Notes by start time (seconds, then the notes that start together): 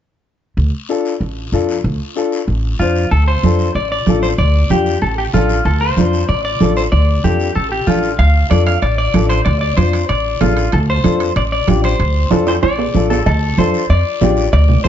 0.57 D2, long guiro
0.89 D4 F4 A4, short guiro
1.05 short guiro
1.21 A1, long guiro
1.52 F2 D4 F4 A4, short guiro
1.69 short guiro
1.84 D2, long guiro
2.16 D4 F4 A4, short guiro
2.32 short guiro
2.48 A1, long guiro
2.79 F2 D4 F4 C5, short guiro
2.96 short guiro
3.11 D2 A4, high conga, long guiro
3.28 C5
3.43 F2 D4 F4 A4, high conga, short guiro
3.59 short guiro
3.75 A1 D5, high conga, long guiro
3.92 D5
4.07 A1 D4 F4 A4, high conga, short guiro
4.23 C5, short guiro
4.38 D2 D5, high conga, long guiro
4.70 F2 D4 F4 G4, high conga, short guiro
4.86 short guiro
5.02 A1 A4, high conga, long guiro
5.18 G4
5.33 A1 D4 F4 A4, high conga, short guiro
5.49 short guiro
5.65 D2 A4, high conga, long guiro
5.81 C5
5.97 F2 D4 F4 C5, high conga, short guiro
6.13 short guiro
6.29 A1 D5, high conga, long guiro
6.45 D5
6.60 A1 D4 F4 A4, high conga, short guiro
6.76 C5, short guiro
6.92 D2 D5, high conga, long guiro
7.24 F2 D4 F4 G4 A4, high conga, short guiro
7.40 short guiro
7.55 A1 A4, high conga, long guiro
7.72 G4
7.87 A1 D4 F4 A4, high conga, short guiro
8.03 short guiro
8.19 D2 F5, high conga, high timbale, long guiro
8.50 F2 D4 F4 A4 D5, high conga, high timbale, short guiro
8.66 F5, high timbale, short guiro
8.82 A1 D5, high conga, high timbale, long guiro
8.98 D5
9.14 A1 D4 F4 A4, high conga, high timbale, short guiro
9.29 C5, high timbale, short guiro
9.45 D2 D5, high conga, high timbale, long guiro
9.61 D5
9.77 F2 D4 F4 C5, high conga, high timbale, short guiro
9.93 high timbale, short guiro
10.09 A1 D5, high conga, high timbale, long guiro
10.41 A1 D4 F4 A4, high conga, high timbale, low timbale, short guiro
10.57 high timbale, short guiro
10.72 D2 A4, high conga, high timbale, long guiro
10.90 C5
11.04 F2 D4 F4 A4, high conga, high timbale, short guiro
11.20 high timbale, short guiro
11.36 A1 D5, high conga, high timbale, long guiro
11.52 D5
11.67 A1 D4 F4 G4, high conga, high timbale, short guiro
11.84 C5, high timbale, short guiro
11.99 D2, high conga, high timbale, long guiro
12.31 F2 D4 F4 A4, high conga, high timbale, short guiro
12.47 C5, high timbale, short guiro
12.63 A1 D5, high conga, high timbale, long guiro
12.79 low timbale
12.94 A1 D4 F4 A4, high conga, short guiro
13.10 A4, low timbale, short guiro
13.26 D2 A4, cowbell, high conga, long guiro
13.58 F2 D4 F4 A4 C5, cowbell, high conga, short guiro
13.74 short guiro
13.90 F2 D5, cowbell, high conga, long guiro
14.21 A1 D4 F4 G4, cowbell, high conga, low timbale, short guiro
14.37 short guiro
14.53 D2 D5, cowbell, high conga, long guiro
14.68 low conga
14.84 F2 D4 F4 A4 C5, cowbell, high conga, short guiro